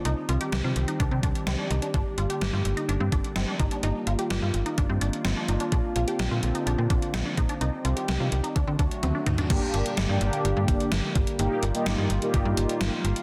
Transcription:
0.05 fm bass C2, analog synth pad D#3 G3 C4 G4, synth arpeggio sound D#4, closed hi-hat
0.29 fm bass C2, synth arpeggio sound F4, closed hi-hat
0.41 synth arpeggio sound G4, closed hi-hat
0.52 fm bass C2, synth arpeggio sound G4, snare, closed hi-hat
0.64 fm bass C3, synth arpeggio sound F4
0.76 fm bass C2, closed hi-hat
0.88 synth arpeggio sound D#4, closed hi-hat
1.00 fm bass C2, synth arpeggio sound D4, kick, closed hi-hat
1.11 fm bass C3, synth arpeggio sound C4
1.23 fm bass C2, synth arpeggio sound D4, kick, closed hi-hat
1.35 closed hi-hat
1.47 fm bass C2, synth arpeggio sound C4, snare, closed hi-hat
1.59 synth arpeggio sound D4
1.70 fm bass C2, synth arpeggio sound D#4, closed hi-hat
1.82 synth arpeggio sound D4, closed hi-hat
1.94 fm bass G1, analog synth pad D3 G3 A#3, synth arpeggio sound D4, kick, closed hi-hat
2.18 fm bass G1, synth arpeggio sound F4, closed hi-hat
2.30 synth arpeggio sound G4, closed hi-hat
2.41 fm bass G1, synth arpeggio sound G4, snare, closed hi-hat
2.53 fm bass G2, synth arpeggio sound F4
2.65 fm bass G1, closed hi-hat
2.77 synth arpeggio sound D#4, closed hi-hat
2.89 fm bass G1, synth arpeggio sound D4, closed hi-hat
3.00 fm bass G2, synth arpeggio sound C4
3.12 fm bass G1, synth arpeggio sound D4, kick, closed hi-hat
3.24 closed hi-hat
3.36 fm bass G1, synth arpeggio sound C4, snare, closed hi-hat
3.48 synth arpeggio sound D4
3.60 fm bass G1, synth arpeggio sound D#4, kick, closed hi-hat
3.71 synth arpeggio sound D4, closed hi-hat
3.83 fm bass G1, analog synth pad D#3 F4, synth arpeggio sound D#4, closed hi-hat
4.07 fm bass G1, synth arpeggio sound F4, closed hi-hat
4.19 synth arpeggio sound G4, closed hi-hat
4.30 fm bass G1, synth arpeggio sound G4, snare, closed hi-hat
4.42 fm bass G2, synth arpeggio sound F4
4.54 fm bass G1, closed hi-hat
4.66 synth arpeggio sound D#4, closed hi-hat
4.78 fm bass G1, synth arpeggio sound D4, kick, closed hi-hat
4.89 fm bass G2, synth arpeggio sound C4
5.01 fm bass G1, synth arpeggio sound D4, closed hi-hat
5.13 closed hi-hat
5.25 fm bass G1, synth arpeggio sound C4, snare, closed hi-hat
5.37 synth arpeggio sound D4
5.48 fm bass G1, synth arpeggio sound D#4, closed hi-hat
5.60 synth arpeggio sound D4, closed hi-hat
5.72 fm bass A#1, analog synth pad D3 C4, synth arpeggio sound D4, kick, closed hi-hat
5.96 fm bass A#1, synth arpeggio sound F4, closed hi-hat
6.08 synth arpeggio sound G4, closed hi-hat
6.19 fm bass A#1, synth arpeggio sound G4, snare, closed hi-hat
6.31 fm bass A#2, synth arpeggio sound F4
6.43 fm bass A#1, closed hi-hat
6.55 synth arpeggio sound D#4, closed hi-hat
6.66 fm bass A#1, synth arpeggio sound D4, closed hi-hat
6.78 fm bass A#2, synth arpeggio sound C4
6.90 fm bass A#1, synth arpeggio sound D4, kick, closed hi-hat
7.02 closed hi-hat
7.14 fm bass A#1, synth arpeggio sound C4, snare, closed hi-hat
7.26 synth arpeggio sound D4
7.37 fm bass A#1, synth arpeggio sound D#4, kick, closed hi-hat
7.49 synth arpeggio sound D4, closed hi-hat
7.61 fm bass C2, analog synth pad D#3 G3 C4 G4, synth arpeggio sound D#4, closed hi-hat
7.85 fm bass C2, synth arpeggio sound F4, closed hi-hat
7.96 synth arpeggio sound G4, closed hi-hat
8.08 fm bass C2, synth arpeggio sound G4, snare, closed hi-hat
8.20 fm bass C3, synth arpeggio sound F4
8.32 fm bass C2, closed hi-hat
8.44 synth arpeggio sound D#4, closed hi-hat
8.56 fm bass D2, analog synth pad D3 F#3 A3 F#4, synth arpeggio sound D4, kick, closed hi-hat
8.67 fm bass D3, synth arpeggio sound C4
8.79 fm bass D2, synth arpeggio sound D4, kick, closed hi-hat
8.91 closed hi-hat
9.03 fm bass D2, synth arpeggio sound C4, closed hi-hat, high tom
9.15 synth arpeggio sound D4
9.26 fm bass D2, synth arpeggio sound D#4, closed hi-hat, mid tom
9.38 synth arpeggio sound D4, closed hi-hat, floor tom
9.50 fm bass G1, analog synth pad D3 G3 A#3 G4, analog polysynth A#3 D4 G4, kick, closed hi-hat, crash
9.74 fm bass G1, closed hi-hat
9.86 closed hi-hat
9.97 fm bass G1, snare, closed hi-hat
10.09 fm bass G2, analog polysynth A#3 D4 G4
10.21 fm bass G1, analog polysynth A#3 D4 G4, closed hi-hat
10.33 closed hi-hat
10.45 fm bass G1, closed hi-hat
10.57 fm bass G2
10.68 fm bass G1, kick, closed hi-hat
10.80 closed hi-hat
10.92 fm bass G1, snare, closed hi-hat
11.15 fm bass G1, kick, closed hi-hat
11.27 closed hi-hat
11.39 fm bass G1, analog synth pad D#3 F4, analog polysynth A#3 D#4 G4, closed hi-hat
11.63 fm bass G1, closed hi-hat
11.75 analog polysynth A#3 D#4 G4, closed hi-hat
11.86 fm bass G1, snare, closed hi-hat
11.98 fm bass G2
12.10 fm bass G1, closed hi-hat
12.22 analog polysynth A#3 D#4 G4, closed hi-hat
12.34 fm bass G1, kick, closed hi-hat
12.45 fm bass G2
12.57 fm bass G1, closed hi-hat
12.69 closed hi-hat
12.81 fm bass G1, snare, closed hi-hat
13.04 fm bass G1, closed hi-hat
13.16 closed hi-hat

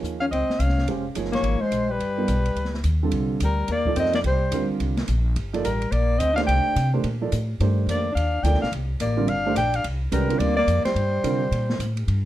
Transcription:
Already playing: grand piano F3 A#3 D#4 G#4 C#5
0.03 upright bass D#2, hi-hat pedal
0.20 alto saxophone C#4, soprano saxophone F5
0.31 upright bass C#2, alto saxophone C4, soprano saxophone D#5, ride
0.50 snare
0.59 upright bass C2, alto saxophone C#4, soprano saxophone F5, hi-hat pedal, ride
0.69 snare
0.78 snare
0.87 upright bass F1, grand piano G#3 C#4 G4 C5 F5, ride
1.15 upright bass G1, grand piano F3 A#3 D#4 G#4 C#5, hi-hat pedal, ride
1.25 snare
1.32 alto saxophone A#3, soprano saxophone C#5, snare, ride
1.43 upright bass G#1, ride
1.61 alto saxophone G#3, soprano saxophone C5, muted upright bass stroke
1.71 upright bass A#1, hi-hat pedal, ride
1.90 alto saxophone G3, soprano saxophone B4
1.99 upright bass G1, ride
2.18 grand piano G3 B3 D#4 F4 A#4
2.28 upright bass B1, hi-hat pedal, ride
2.46 ride
2.56 upright bass C#2, ride
2.65 snare
2.74 snare
2.84 upright bass D#2, hi-hat pedal, ride
3.03 grand piano D3 G3 C4 F4 A4
3.11 upright bass C2, ride
3.40 upright bass D2, alto saxophone G3, hi-hat pedal, ride
3.45 soprano saxophone A#4
3.68 upright bass D#2, alto saxophone A#3, ride
3.72 soprano saxophone D5
3.85 grand piano F3 A#3 D#4 A4 D5, kick
3.96 upright bass F2, alto saxophone C4, soprano saxophone D#5, hi-hat pedal, ride
4.05 snare
4.13 alto saxophone A#3, soprano saxophone D5, snare, ride
4.24 upright bass C2, alto saxophone G3, soprano saxophone C5, ride
4.51 upright bass D2, grand piano D3 G3 C4 F4 A#4, hi-hat pedal, ride
4.69 muted upright bass stroke
4.80 upright bass C2, ride
4.97 snare, ride
5.08 upright bass A#1, hi-hat pedal, ride
5.36 upright bass G1, ride
5.53 grand piano F3 A#3 D#4 A4 D5, ride
5.64 upright bass A1, alto saxophone G3, soprano saxophone A#4, hi-hat pedal, ride
5.82 ride
5.91 upright bass A#1, alto saxophone A#3, soprano saxophone D5, ride
6.18 upright bass D2, alto saxophone C4, soprano saxophone D#5, hi-hat pedal, ride
6.34 grand piano D#3 A3 D4, alto saxophone D4, soprano saxophone F5, snare, ride
6.38 grand piano G4 C5
6.44 upright bass C2, alto saxophone D4, soprano saxophone G5
6.48 ride
6.76 upright bass C3, hi-hat pedal, ride
6.93 grand piano D#3 A3 D4 G4 C5
7.04 upright bass A#2, ride
7.21 grand piano F3 A#3 D#4 A4 D5
7.32 upright bass A2, hi-hat pedal, ride
7.60 upright bass G2, grand piano D#3 A3 D4 G4 C5, ride
7.87 upright bass F2, alto saxophone A#3, soprano saxophone D5, hi-hat pedal, ride
8.12 upright bass D#2, alto saxophone D4, soprano saxophone F5
8.17 ride
8.41 upright bass D2, grand piano F3, alto saxophone D4, soprano saxophone G5, hi-hat pedal, ride
8.45 grand piano A#3 D#4 A4 D5
8.53 upright bass C2, snare
8.60 upright bass A#1, alto saxophone D4, soprano saxophone F5, snare
8.72 upright bass C2, ride
9.00 upright bass A1, alto saxophone A#3, soprano saxophone D5, hi-hat pedal, ride
9.17 grand piano D3 G3 C4 F4 A#4
9.27 upright bass G1, alto saxophone D4, soprano saxophone F5, ride
9.46 grand piano D#3 A3 D4 G4 C5
9.55 upright bass A#1, alto saxophone D4, soprano saxophone G5, hi-hat pedal, ride
9.74 alto saxophone D4, soprano saxophone F5, ride
9.84 upright bass C2, ride
10.12 upright bass C2, grand piano D#3 G#3 C#4 F#4 B4, alto saxophone G3, soprano saxophone A#4, hi-hat pedal, ride
10.29 grand piano D3 G3 C4 F4 A#4, ride
10.39 upright bass D2, alto saxophone A#3, soprano saxophone D5, ride
10.56 alto saxophone A#3, soprano saxophone D5
10.67 upright bass F2, hi-hat pedal, ride
10.85 alto saxophone G3, soprano saxophone C5, muted upright bass stroke, snare, ride
10.95 upright bass G2, ride
11.24 upright bass C3, grand piano D3 G3 C4 F4 A#4, hi-hat pedal, ride
11.51 upright bass A#2, ride
11.70 snare
11.79 upright bass A2, hi-hat pedal, ride
11.97 ride
12.08 upright bass G2, ride

